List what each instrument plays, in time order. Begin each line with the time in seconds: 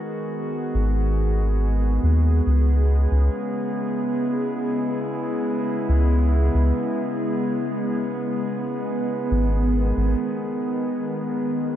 Already playing: ambient pad D#3 G#3 B3 F#4 G#4
0.75 sub bass G#1
2.03 sub bass D#2
2.46 sub bass C#2, ambient pad C#3
3.11 sub bass C#2
3.46 ambient pad E4
5.89 sub bass C#2
6.55 sub bass C#2
9.31 sub bass G#1, ambient pad D#3
9.97 sub bass G#1
11.40 ambient pad F#4